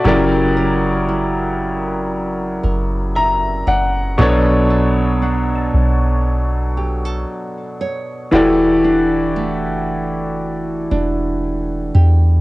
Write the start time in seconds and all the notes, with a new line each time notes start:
Already playing: D4 F#4 A4 C#5
0.04 F#1 C#3 F#3 E4 G4 A#4 D5
0.57 A#4
1.09 E4
2.63 F#1 A#4
3.15 E5 A#5
3.67 F#1 D5 F#5
4.18 B1 B2 F#3 B3 D4 A4 C#5
4.70 A4
5.22 D4 F#5
5.55 A5
5.74 B1
6.77 G4
7.05 A4
7.81 C#5
8.31 E1 E3 E4 F#4 G4 A4 D5
8.84 D4
9.36 A3
9.64 F#1
10.91 E1 D4
11.94 E2 G4